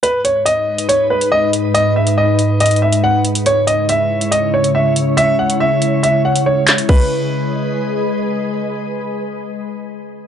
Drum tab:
CC |--------------------------------|--------------------------------|--------------------------------|--------------------------------|
HH |x---x---x-----x-x-----x-----x---|x-----x-----x---xxxx--x-----x-x-|x---x---x-----x-x-----x-----x---|x-----x-----x---x-----x-----x-x-|
CP |--------------------------------|--------------------------------|--------------------------------|----------------------------x---|
BD |--------------------------------|--------------------------------|--------------------------------|--------------------------------|

CC |x-------------------------------|--------------------------------|
HH |--------------------------------|--------------------------------|
CP |--------------------------------|--------------------------------|
BD |o-------------------------------|--------------------------------|